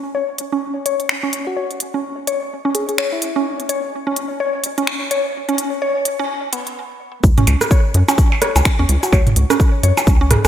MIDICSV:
0, 0, Header, 1, 6, 480
1, 0, Start_track
1, 0, Key_signature, 4, "minor"
1, 0, Tempo, 472441
1, 1591, Time_signature, 4, 2, 24, 8
1, 10647, End_track
2, 0, Start_track
2, 0, Title_t, "Soft synth lead"
2, 0, Program_c, 0, 80
2, 1492, Note_on_c, 0, 66, 92
2, 1620, Note_off_c, 0, 66, 0
2, 2791, Note_on_c, 0, 68, 91
2, 2883, Note_off_c, 0, 68, 0
2, 2934, Note_on_c, 0, 68, 80
2, 2996, Note_off_c, 0, 68, 0
2, 3174, Note_on_c, 0, 64, 99
2, 3654, Note_off_c, 0, 64, 0
2, 9175, Note_on_c, 0, 66, 96
2, 9301, Note_off_c, 0, 66, 0
2, 10471, Note_on_c, 0, 68, 96
2, 10563, Note_off_c, 0, 68, 0
2, 10614, Note_on_c, 0, 68, 76
2, 10647, Note_off_c, 0, 68, 0
2, 10647, End_track
3, 0, Start_track
3, 0, Title_t, "Synth arpeggio sound"
3, 0, Program_c, 1, 84
3, 149, Note_on_c, 1, 73, 81
3, 251, Note_off_c, 1, 73, 0
3, 533, Note_on_c, 1, 61, 102
3, 580, Note_off_c, 1, 61, 0
3, 871, Note_on_c, 1, 73, 76
3, 972, Note_off_c, 1, 73, 0
3, 1253, Note_on_c, 1, 61, 99
3, 1299, Note_off_c, 1, 61, 0
3, 1591, Note_on_c, 1, 73, 84
3, 1692, Note_off_c, 1, 73, 0
3, 1973, Note_on_c, 1, 61, 101
3, 2020, Note_off_c, 1, 61, 0
3, 2310, Note_on_c, 1, 73, 76
3, 2412, Note_off_c, 1, 73, 0
3, 2693, Note_on_c, 1, 61, 104
3, 2739, Note_off_c, 1, 61, 0
3, 3031, Note_on_c, 1, 73, 82
3, 3132, Note_off_c, 1, 73, 0
3, 3414, Note_on_c, 1, 61, 105
3, 3460, Note_off_c, 1, 61, 0
3, 3751, Note_on_c, 1, 73, 75
3, 3852, Note_off_c, 1, 73, 0
3, 4133, Note_on_c, 1, 61, 107
3, 4180, Note_off_c, 1, 61, 0
3, 4472, Note_on_c, 1, 73, 85
3, 4573, Note_off_c, 1, 73, 0
3, 4854, Note_on_c, 1, 61, 101
3, 4900, Note_off_c, 1, 61, 0
3, 5191, Note_on_c, 1, 73, 76
3, 5292, Note_off_c, 1, 73, 0
3, 5574, Note_on_c, 1, 61, 104
3, 5620, Note_off_c, 1, 61, 0
3, 5911, Note_on_c, 1, 73, 83
3, 6012, Note_off_c, 1, 73, 0
3, 6294, Note_on_c, 1, 61, 102
3, 6340, Note_off_c, 1, 61, 0
3, 6631, Note_on_c, 1, 59, 80
3, 6698, Note_off_c, 1, 59, 0
3, 7494, Note_on_c, 1, 61, 103
3, 7540, Note_off_c, 1, 61, 0
3, 7832, Note_on_c, 1, 73, 80
3, 7933, Note_off_c, 1, 73, 0
3, 8214, Note_on_c, 1, 61, 103
3, 8260, Note_off_c, 1, 61, 0
3, 8551, Note_on_c, 1, 73, 80
3, 8652, Note_off_c, 1, 73, 0
3, 8933, Note_on_c, 1, 61, 102
3, 8980, Note_off_c, 1, 61, 0
3, 9271, Note_on_c, 1, 73, 86
3, 9372, Note_off_c, 1, 73, 0
3, 9654, Note_on_c, 1, 61, 104
3, 9700, Note_off_c, 1, 61, 0
3, 9991, Note_on_c, 1, 73, 76
3, 10092, Note_off_c, 1, 73, 0
3, 10374, Note_on_c, 1, 61, 104
3, 10420, Note_off_c, 1, 61, 0
3, 10647, End_track
4, 0, Start_track
4, 0, Title_t, "Analog synth bass"
4, 0, Program_c, 2, 38
4, 7352, Note_on_c, 2, 37, 104
4, 7441, Note_off_c, 2, 37, 0
4, 7592, Note_on_c, 2, 37, 93
4, 7681, Note_off_c, 2, 37, 0
4, 8072, Note_on_c, 2, 42, 101
4, 8161, Note_off_c, 2, 42, 0
4, 8694, Note_on_c, 2, 37, 97
4, 8755, Note_off_c, 2, 37, 0
4, 8934, Note_on_c, 2, 40, 83
4, 8995, Note_off_c, 2, 40, 0
4, 9032, Note_on_c, 2, 37, 97
4, 9121, Note_off_c, 2, 37, 0
4, 9272, Note_on_c, 2, 37, 102
4, 9361, Note_off_c, 2, 37, 0
4, 9511, Note_on_c, 2, 37, 91
4, 9600, Note_off_c, 2, 37, 0
4, 9991, Note_on_c, 2, 42, 97
4, 10080, Note_off_c, 2, 42, 0
4, 10231, Note_on_c, 2, 37, 83
4, 10528, Note_off_c, 2, 37, 0
4, 10615, Note_on_c, 2, 37, 91
4, 10647, Note_off_c, 2, 37, 0
4, 10647, End_track
5, 0, Start_track
5, 0, Title_t, "Percussion blips"
5, 7591, Note_on_c, 9, 76, 66
5, 7693, Note_off_c, 9, 76, 0
5, 8214, Note_on_c, 9, 77, 79
5, 8315, Note_off_c, 9, 77, 0
5, 8454, Note_on_c, 9, 76, 67
5, 8556, Note_off_c, 9, 76, 0
5, 8695, Note_on_c, 9, 77, 82
5, 8796, Note_off_c, 9, 77, 0
5, 9175, Note_on_c, 9, 77, 55
5, 9272, Note_on_c, 9, 76, 65
5, 9276, Note_off_c, 9, 77, 0
5, 9374, Note_off_c, 9, 76, 0
5, 10134, Note_on_c, 9, 76, 63
5, 10134, Note_on_c, 9, 77, 81
5, 10236, Note_off_c, 9, 76, 0
5, 10236, Note_off_c, 9, 77, 0
5, 10614, Note_on_c, 9, 77, 82
5, 10647, Note_off_c, 9, 77, 0
5, 10647, End_track
6, 0, Start_track
6, 0, Title_t, "Drums"
6, 390, Note_on_c, 9, 42, 89
6, 492, Note_off_c, 9, 42, 0
6, 871, Note_on_c, 9, 42, 89
6, 972, Note_off_c, 9, 42, 0
6, 1013, Note_on_c, 9, 42, 37
6, 1110, Note_on_c, 9, 26, 109
6, 1115, Note_off_c, 9, 42, 0
6, 1212, Note_off_c, 9, 26, 0
6, 1350, Note_on_c, 9, 42, 94
6, 1452, Note_off_c, 9, 42, 0
6, 1733, Note_on_c, 9, 42, 37
6, 1830, Note_off_c, 9, 42, 0
6, 1830, Note_on_c, 9, 42, 97
6, 1932, Note_off_c, 9, 42, 0
6, 2310, Note_on_c, 9, 42, 95
6, 2412, Note_off_c, 9, 42, 0
6, 2791, Note_on_c, 9, 42, 92
6, 2892, Note_off_c, 9, 42, 0
6, 2933, Note_on_c, 9, 42, 38
6, 3031, Note_on_c, 9, 26, 110
6, 3035, Note_off_c, 9, 42, 0
6, 3132, Note_off_c, 9, 26, 0
6, 3271, Note_on_c, 9, 42, 98
6, 3372, Note_off_c, 9, 42, 0
6, 3654, Note_on_c, 9, 42, 40
6, 3751, Note_off_c, 9, 42, 0
6, 3751, Note_on_c, 9, 42, 99
6, 3853, Note_off_c, 9, 42, 0
6, 4231, Note_on_c, 9, 42, 97
6, 4332, Note_off_c, 9, 42, 0
6, 4710, Note_on_c, 9, 42, 98
6, 4812, Note_off_c, 9, 42, 0
6, 4854, Note_on_c, 9, 42, 39
6, 4951, Note_on_c, 9, 26, 110
6, 4956, Note_off_c, 9, 42, 0
6, 5053, Note_off_c, 9, 26, 0
6, 5191, Note_on_c, 9, 42, 102
6, 5293, Note_off_c, 9, 42, 0
6, 5574, Note_on_c, 9, 42, 38
6, 5671, Note_off_c, 9, 42, 0
6, 5671, Note_on_c, 9, 42, 100
6, 5773, Note_off_c, 9, 42, 0
6, 6151, Note_on_c, 9, 42, 99
6, 6252, Note_off_c, 9, 42, 0
6, 6631, Note_on_c, 9, 42, 98
6, 6733, Note_off_c, 9, 42, 0
6, 6774, Note_on_c, 9, 42, 39
6, 6875, Note_off_c, 9, 42, 0
6, 7351, Note_on_c, 9, 69, 43
6, 7352, Note_on_c, 9, 36, 122
6, 7453, Note_off_c, 9, 36, 0
6, 7453, Note_off_c, 9, 69, 0
6, 7494, Note_on_c, 9, 42, 38
6, 7494, Note_on_c, 9, 45, 98
6, 7591, Note_off_c, 9, 42, 0
6, 7591, Note_on_c, 9, 42, 91
6, 7596, Note_off_c, 9, 45, 0
6, 7693, Note_off_c, 9, 42, 0
6, 7733, Note_on_c, 9, 37, 71
6, 7733, Note_on_c, 9, 69, 55
6, 7831, Note_off_c, 9, 69, 0
6, 7831, Note_on_c, 9, 69, 47
6, 7832, Note_on_c, 9, 36, 103
6, 7835, Note_off_c, 9, 37, 0
6, 7933, Note_off_c, 9, 36, 0
6, 7933, Note_off_c, 9, 69, 0
6, 8071, Note_on_c, 9, 42, 91
6, 8173, Note_off_c, 9, 42, 0
6, 8214, Note_on_c, 9, 69, 55
6, 8311, Note_off_c, 9, 69, 0
6, 8311, Note_on_c, 9, 69, 45
6, 8312, Note_on_c, 9, 36, 119
6, 8413, Note_off_c, 9, 36, 0
6, 8413, Note_off_c, 9, 69, 0
6, 8551, Note_on_c, 9, 42, 93
6, 8552, Note_on_c, 9, 37, 71
6, 8653, Note_off_c, 9, 42, 0
6, 8654, Note_off_c, 9, 37, 0
6, 8694, Note_on_c, 9, 42, 39
6, 8694, Note_on_c, 9, 69, 55
6, 8792, Note_off_c, 9, 69, 0
6, 8792, Note_on_c, 9, 26, 112
6, 8792, Note_on_c, 9, 36, 103
6, 8792, Note_on_c, 9, 69, 44
6, 8796, Note_off_c, 9, 42, 0
6, 8893, Note_off_c, 9, 36, 0
6, 8894, Note_off_c, 9, 26, 0
6, 8894, Note_off_c, 9, 69, 0
6, 9032, Note_on_c, 9, 42, 96
6, 9134, Note_off_c, 9, 42, 0
6, 9174, Note_on_c, 9, 69, 54
6, 9272, Note_off_c, 9, 69, 0
6, 9272, Note_on_c, 9, 36, 125
6, 9272, Note_on_c, 9, 69, 41
6, 9373, Note_off_c, 9, 36, 0
6, 9374, Note_off_c, 9, 69, 0
6, 9414, Note_on_c, 9, 45, 97
6, 9415, Note_on_c, 9, 42, 39
6, 9512, Note_off_c, 9, 42, 0
6, 9512, Note_on_c, 9, 42, 100
6, 9516, Note_off_c, 9, 45, 0
6, 9614, Note_off_c, 9, 42, 0
6, 9654, Note_on_c, 9, 37, 69
6, 9655, Note_on_c, 9, 69, 53
6, 9751, Note_on_c, 9, 36, 110
6, 9753, Note_off_c, 9, 69, 0
6, 9753, Note_on_c, 9, 69, 45
6, 9756, Note_off_c, 9, 37, 0
6, 9853, Note_off_c, 9, 36, 0
6, 9854, Note_off_c, 9, 69, 0
6, 9992, Note_on_c, 9, 42, 99
6, 10094, Note_off_c, 9, 42, 0
6, 10134, Note_on_c, 9, 69, 54
6, 10231, Note_off_c, 9, 69, 0
6, 10231, Note_on_c, 9, 36, 122
6, 10231, Note_on_c, 9, 69, 43
6, 10332, Note_off_c, 9, 69, 0
6, 10333, Note_off_c, 9, 36, 0
6, 10471, Note_on_c, 9, 42, 95
6, 10472, Note_on_c, 9, 37, 67
6, 10472, Note_on_c, 9, 45, 100
6, 10572, Note_off_c, 9, 42, 0
6, 10574, Note_off_c, 9, 37, 0
6, 10574, Note_off_c, 9, 45, 0
6, 10614, Note_on_c, 9, 37, 66
6, 10614, Note_on_c, 9, 42, 39
6, 10614, Note_on_c, 9, 69, 55
6, 10647, Note_off_c, 9, 37, 0
6, 10647, Note_off_c, 9, 42, 0
6, 10647, Note_off_c, 9, 69, 0
6, 10647, End_track
0, 0, End_of_file